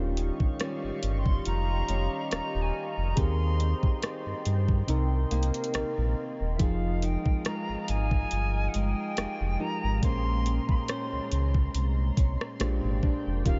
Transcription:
Already playing: sub bass D#1, synth keys D#3 C#4 F4 G4, nylon-string guitar D#3, analog synth pad G4 D#5 F5 C#6
0.17 nylon-string guitar C#4, closed hi-hat
0.40 sub bass G1, kick
0.60 nylon-string guitar G3 C#4 F4, cross-stick, closed hi-hat
0.84 sub bass G1
1.03 sub bass G1, closed hi-hat
1.12 flute C#6
1.18 flute C6
1.26 kick
1.45 sub bass F1, nylon-string guitar F4, flute A#5, closed hi-hat
1.88 sub bass F1, nylon-string guitar G3 C#4 F4, closed hi-hat
2.31 sub bass D#1, flute A#5, cross-stick, closed hi-hat
2.55 sub bass D#1
2.62 flute G#5
2.89 flute A#5
2.97 sub bass F1
3.16 sub bass D#2, nylon-string guitar D#3, synth keys C4 G4 G#4, analog synth pad C5 G5 C6, flute C6, kick, closed hi-hat
3.60 nylon-string guitar C4, closed hi-hat
3.83 sub bass G2, kick
4.02 nylon-string guitar C4 G4, cross-stick, closed hi-hat
4.26 sub bass G2
4.45 sub bass G2, closed hi-hat
4.68 kick
4.87 sub bass C2, synth keys C3 C4 D#4 A#4, nylon-string guitar C3, analog synth pad A#4, closed hi-hat
5.31 sub bass C2, nylon-string guitar A#3 D#4 G4, closed hi-hat
5.43 closed hi-hat
5.54 closed hi-hat
5.64 closed hi-hat
5.74 sub bass A#1, cross-stick, closed hi-hat
5.98 sub bass A#1
6.41 sub bass D#1
6.54 flute E5
6.58 sub bass F1, synth keys F3 D#4 F4 G#4, nylon-string guitar F3, analog synth pad G#3 D#5 F5 D#6, flute F5, kick, closed hi-hat
7.02 nylon-string guitar D#4, flute G5, closed hi-hat
7.26 sub bass G#1, kick
7.45 nylon-string guitar G#3 D#4, flute A#5, cross-stick, closed hi-hat
7.69 sub bass G#1
7.88 sub bass G#1, flute G#5, closed hi-hat
8.11 kick
8.31 sub bass G1, closed hi-hat
8.68 flute F#5
8.74 sub bass G1, nylon-string guitar G#3, flute G5, closed hi-hat
9.17 sub bass F1, nylon-string guitar G#3 D#4 G4, cross-stick, closed hi-hat
9.41 sub bass F1
9.59 synth keys F3 D#4 G4 A#4, nylon-string guitar D#4, flute A#5
9.84 sub bass G#1
10.01 sub bass A#1, synth keys A#2 G#3 C#4 C5, nylon-string guitar A#3, analog synth pad C#4 A#5 C6, flute C6, kick, closed hi-hat
10.46 nylon-string guitar G#4, closed hi-hat
10.69 sub bass C#2, flute C6, kick
10.88 nylon-string guitar C#4 G#4 C5, cross-stick, closed hi-hat
11.13 sub bass C#2
11.32 sub bass C#2, closed hi-hat
11.54 kick
11.74 sub bass C2, closed hi-hat
12.17 sub bass C2, nylon-string guitar C#4, kick, closed hi-hat
12.41 cross-stick
12.60 sub bass A#1, synth keys A#2 G#3 D4 G4 C5, nylon-string guitar A#2, analog synth pad D5 G5, cross-stick, closed hi-hat
12.84 sub bass G#1
13.03 nylon-string guitar D4, kick
13.27 sub bass F1
13.44 sub bass D#1, synth keys D#3 C#4 F4 G4, nylon-string guitar D#3, analog synth pad G4 D#5 F5 C#6, flute F5, kick, closed hi-hat

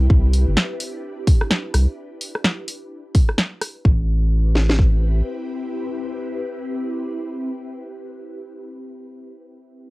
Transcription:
Already playing: ambient pad D4 E4 G4 B4
0.10 sub bass C2, kick
0.33 open hi-hat
0.47 sub bass G1
0.57 snare
0.80 open hi-hat
1.27 kick, open hi-hat
1.41 cross-stick
1.51 snare
1.74 sub bass C2, cross-stick, open hi-hat
2.21 open hi-hat
2.35 cross-stick
2.44 snare
2.68 open hi-hat
3.15 kick, open hi-hat
3.29 cross-stick
3.38 snare
3.61 cross-stick, open hi-hat
3.85 sub bass A1, ambient pad C4 E4 G4 B4, kick
4.55 snare
4.70 snare
4.79 kick

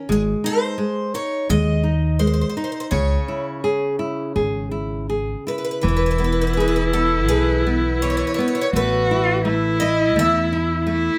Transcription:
0.09 upright bass G#1, nylon-string guitar G#3, twelve-string acoustic guitar G#4
0.44 nylon-string guitar D#4, twelve-string acoustic guitar C5
0.78 nylon-string guitar G#3
1.14 nylon-string guitar D#4, twelve-string acoustic guitar C#5
1.49 upright bass D#2, nylon-string guitar G#3, twelve-string acoustic guitar D#5
1.83 nylon-string guitar D#4
2.19 nylon-string guitar G#3, twelve-string acoustic guitar C5
2.27 twelve-string acoustic guitar C5
2.34 twelve-string acoustic guitar C5
2.41 twelve-string acoustic guitar C5
2.49 twelve-string acoustic guitar C5
2.57 nylon-string guitar D#4, twelve-string acoustic guitar C5
2.64 twelve-string acoustic guitar C5
2.72 twelve-string acoustic guitar C5
2.80 twelve-string acoustic guitar C5
2.91 upright bass C#2, nylon-string guitar C#3, twelve-string acoustic guitar C#5
3.28 nylon-string guitar E4
3.64 nylon-string guitar G#4
3.99 nylon-string guitar E4
4.36 upright bass G#1, nylon-string guitar G#4
4.71 nylon-string guitar E4
5.09 nylon-string guitar G#4
5.47 nylon-string guitar E4, twelve-string acoustic guitar B4
5.58 twelve-string acoustic guitar B4
5.64 twelve-string acoustic guitar B4
5.71 twelve-string acoustic guitar B4
5.82 upright bass E1, nylon-string guitar E3, cello E4, twelve-string acoustic guitar B4
5.88 twelve-string acoustic guitar B4
5.97 twelve-string acoustic guitar B4
6.06 twelve-string acoustic guitar B4
6.11 twelve-string acoustic guitar B4
6.18 nylon-string guitar B3, twelve-string acoustic guitar B4
6.24 twelve-string acoustic guitar B4
6.32 twelve-string acoustic guitar B4
6.41 twelve-string acoustic guitar B4
6.47 twelve-string acoustic guitar B4
6.53 nylon-string guitar G#4, twelve-string acoustic guitar B4
6.60 twelve-string acoustic guitar B4
6.68 twelve-string acoustic guitar B4
6.76 twelve-string acoustic guitar B4
6.93 nylon-string guitar B3, twelve-string acoustic guitar A4
7.29 upright bass B1, nylon-string guitar G#4, twelve-string acoustic guitar B4
7.67 nylon-string guitar B3
8.02 nylon-string guitar E3, twelve-string acoustic guitar C#5
8.10 twelve-string acoustic guitar C#5
8.17 twelve-string acoustic guitar C#5
8.27 twelve-string acoustic guitar C#5
8.34 twelve-string acoustic guitar C#5
8.38 nylon-string guitar B3, twelve-string acoustic guitar C#5
8.48 twelve-string acoustic guitar C#5
8.55 twelve-string acoustic guitar C#5
8.61 twelve-string acoustic guitar C#5
8.73 upright bass A1, nylon-string guitar A3, cello F#4, twelve-string acoustic guitar B4
9.11 nylon-string guitar E4
9.45 nylon-string guitar A3, cello E4
9.80 nylon-string guitar E4, twelve-string acoustic guitar D#5
10.16 upright bass E2, nylon-string guitar A3, twelve-string acoustic guitar E5
10.53 nylon-string guitar E4
10.86 nylon-string guitar A3, cello E4

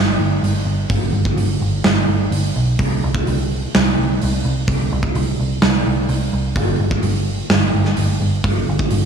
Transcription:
Already playing: picked electric bass G1
0.19 picked electric bass G1
0.43 picked electric bass G1, open hi-hat
0.65 picked electric bass G1
0.90 picked electric bass G1, kick, open hi-hat
1.13 picked electric bass G1
1.25 kick
1.36 picked electric bass G1, open hi-hat
1.61 picked electric bass G1
1.84 picked electric bass G1, snare, open hi-hat
2.08 picked electric bass G1
2.31 picked electric bass G1, open hi-hat
2.56 picked electric bass B1
2.79 picked electric bass C2, kick, open hi-hat
3.04 picked electric bass C2
3.15 kick
3.27 picked electric bass C2, open hi-hat
3.75 picked electric bass C2, snare, open hi-hat
3.98 picked electric bass C2
4.22 picked electric bass C2, open hi-hat
4.45 picked electric bass C2
4.68 picked electric bass C2, kick, open hi-hat
4.92 picked electric bass C2
5.03 kick
5.15 picked electric bass C2, open hi-hat
5.40 picked electric bass C2
5.62 picked electric bass C2, snare, open hi-hat
5.87 picked electric bass C2
6.09 picked electric bass C2, open hi-hat
6.33 picked electric bass C2
6.56 picked electric bass G1, kick, open hi-hat
6.80 picked electric bass G1
6.91 kick
7.03 picked electric bass G1, open hi-hat
7.50 picked electric bass G1, snare, open hi-hat
7.74 picked electric bass G1
7.85 snare
7.97 picked electric bass G1, open hi-hat
8.21 picked electric bass G1
8.44 picked electric bass G1, kick, open hi-hat
8.69 picked electric bass G1
8.79 kick
8.90 picked electric bass G1, open hi-hat

